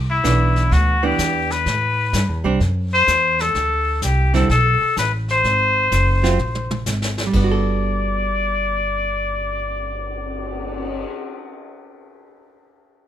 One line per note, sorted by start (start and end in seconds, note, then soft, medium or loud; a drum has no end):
0.00 0.23 C2 medium
0.10 0.74 E4 medium
0.24 0.70 B1 medium
0.24 0.96 E3 medium
0.24 0.97 B3 medium
0.24 0.97 D4 medium
0.24 kick soft
0.24 snare medium
0.24 hi-hat pedal soft
0.56 snare soft
0.71 1.17 D2 medium
0.71 1.06 F#4 medium
0.71 brush sweep soft
0.71 kick soft
0.71 snare soft
1.03 1.63 E3 medium
1.03 1.63 B3 medium
1.03 1.63 D4 medium
1.03 1.53 G4 medium
1.18 1.64 E2 medium
1.18 kick soft
1.18 snare medium
1.18 hi-hat pedal medium
1.50 2.45 B4 medium
1.50 snare soft
1.66 2.12 A2 medium
1.66 brush sweep soft
1.66 kick soft
1.66 snare soft
2.13 2.28 G2 medium
2.13 kick soft
2.13 snare medium
2.13 hi-hat pedal medium
2.28 2.43 E2 soft
2.44 2.59 C2 medium
2.44 2.59 G3 medium
2.44 2.59 C4 medium
2.44 2.60 D4 medium
2.60 3.06 F#2 medium
2.60 brush sweep soft
2.60 kick soft
2.60 snare soft
2.93 3.43 C5 loud
3.07 3.54 E2 medium
3.07 kick soft
3.07 snare medium
3.07 hi-hat pedal medium
3.39 4.03 A4 medium
3.39 snare soft
3.55 4.01 D2 medium
3.55 brush sweep soft
3.55 kick soft
3.55 snare soft
4.02 4.48 C2 medium
4.02 4.32 G4 medium
4.02 kick soft
4.02 snare medium
4.02 hi-hat pedal medium
4.34 4.48 D3 medium
4.34 4.48 G3 medium
4.34 4.48 C4 medium
4.34 4.49 E4 medium
4.34 4.49 A4 medium
4.34 snare soft
4.49 4.79 B1 medium
4.49 4.94 A4 medium
4.49 brush sweep soft
4.49 kick soft
4.49 snare soft
4.81 muted upright bass stroke soft
4.97 5.43 A1 medium
4.97 5.12 B4 medium
4.97 kick soft
4.97 snare medium
4.97 hi-hat pedal medium
5.28 6.84 C5 loud
5.28 snare soft
5.44 5.90 G#1 medium
5.44 brush sweep soft
5.44 kick soft
5.44 snare soft
5.92 6.38 F#1 medium
5.92 kick soft
5.92 snare medium
5.92 hi-hat pedal medium
6.23 6.38 F#3 medium
6.23 6.38 C4 medium
6.23 6.38 F4 medium
6.23 snare soft
6.39 6.85 A#1 medium
6.39 mid tom soft
6.55 mid tom soft
6.71 mid tom medium
6.86 7.32 G#1 medium
6.86 snare medium
6.86 hi-hat pedal medium
7.02 snare medium
7.18 snare medium
7.26 11.00 G3 soft
7.33 11.03 G1 medium
7.33 11.10 B3 medium
7.33 11.05 D5 medium
7.33 kick medium
7.33 crash medium
7.44 11.18 F#4 medium
7.51 11.25 A4 medium
7.65 cymbal swell soft